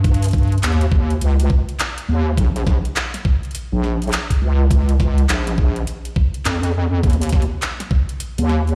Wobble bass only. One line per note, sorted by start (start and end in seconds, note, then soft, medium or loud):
0.00 0.61 G2 loud
0.63 1.19 D#2 loud
1.21 1.48 C#2 medium
2.08 2.36 D#2 loud
2.38 2.82 A#1 medium
3.72 4.11 A#1 loud
4.42 5.27 C#2 loud
5.29 5.85 A#1 loud
6.45 7.02 F2 medium
7.04 7.48 D#2 medium
8.38 8.75 D#2 medium